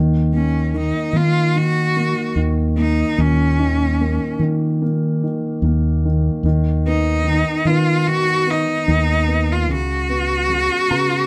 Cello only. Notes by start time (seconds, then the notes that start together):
0.34 C#4
0.78 D#4
1.17 F4
1.58 F#4
2.78 D#4
3.20 C#4
6.87 D#4
7.67 F4
8.07 F#4
8.50 D#4
9.52 F4
9.73 F#4